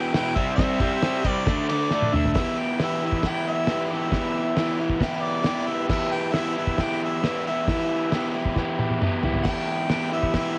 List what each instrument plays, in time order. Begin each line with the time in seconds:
Already playing: overdriven electric guitar E2 B2 E3, harmonica G5
0.14 overdriven electric guitar E2 B2 E3, harmonica G5, snare, ride
0.36 overdriven electric guitar C3 G3 C4, harmonica E5, kick, ride
0.56 overdriven electric guitar C3 G3 C4, harmonica E5, kick, snare, ride
0.80 overdriven electric guitar C3 G3 C4, kick, ride
1.03 overdriven electric guitar C3 G3 C4, snare, ride
1.25 overdriven electric guitar C3 G3 C4, kick, ride
1.29 harmonica D5
1.47 overdriven electric guitar D3 A3 D4, kick, snare, ride
1.69 overdriven electric guitar D3 A3 D4, harmonica D5, ride
1.91 overdriven electric guitar D3 A3 D4, snare
2.02 high tom
2.14 overdriven electric guitar D3 A3 D4, harmonica E5, mid tom
2.25 floor tom
2.34 overdriven electric guitar E3, harmonica E5, kick, snare, open hi-hat
2.38 overdriven electric guitar B3 E4 G4
2.59 harmonica G5
2.80 overdriven electric guitar E3 B3 E4, harmonica E5, snare, open hi-hat
2.84 overdriven electric guitar G4
3.02 overdriven electric guitar B3 E4 G4
3.07 harmonica E5
3.12 kick
3.23 overdriven electric guitar E3 B3 E4 G4, kick, snare, open hi-hat
3.28 harmonica G5
3.48 harmonica E5
3.67 overdriven electric guitar E3 B3 E4, snare, open hi-hat
3.71 overdriven electric guitar G4
3.90 overdriven electric guitar E4 G4, harmonica E5
3.95 overdriven electric guitar B3
4.12 overdriven electric guitar E3 B3 E4 G4, kick, snare, open hi-hat
4.56 overdriven electric guitar E3 B3 E4 G4, snare, open hi-hat
4.77 overdriven electric guitar B3 E4 G4
4.90 kick
5.00 overdriven electric guitar E3 B3 E4 G4, kick, snare, open hi-hat
5.21 harmonica D5
5.43 overdriven electric guitar E3 B3 E4 G4, snare, open hi-hat
5.67 overdriven electric guitar B3 E4 G4, harmonica E5
5.88 overdriven electric guitar E3 B3 E4 G4, harmonica E5, kick, snare, crash
6.11 harmonica G5
6.32 overdriven electric guitar E3 B3 E4, harmonica E5, snare, open hi-hat
6.37 overdriven electric guitar G4
6.55 overdriven electric guitar B3 E4 G4, harmonica E5
6.67 kick
6.78 overdriven electric guitar E3 B3 E4, harmonica G5, kick, snare, open hi-hat
6.83 overdriven electric guitar G4
7.04 harmonica E5
7.23 overdriven electric guitar E3 B3 E4 G4, snare, open hi-hat
7.46 overdriven electric guitar E4 G4, harmonica E5
7.50 overdriven electric guitar B3
7.68 overdriven electric guitar E3 B3 E4 G4, kick, snare, open hi-hat
8.11 overdriven electric guitar E3 B3 E4 G4, snare, open hi-hat
8.34 overdriven electric guitar B3 E4 G4
8.45 kick
8.56 overdriven electric guitar E3 B3 E4, kick, snare
8.60 overdriven electric guitar G4
8.79 high tom
8.90 high tom
9.01 overdriven electric guitar E3 B3 E4 G4, mid tom
9.23 overdriven electric guitar B3 E4 G4, floor tom
9.34 floor tom
9.44 overdriven electric guitar E3 B3 E4, harmonica G5, kick, snare, crash
9.49 overdriven electric guitar G4
9.88 overdriven electric guitar E3 B3 E4 G4, snare, open hi-hat
10.10 overdriven electric guitar B3 E4 G4, harmonica E5
10.23 kick
10.34 overdriven electric guitar E3 B3 E4 G4, kick, snare, open hi-hat
10.38 harmonica E5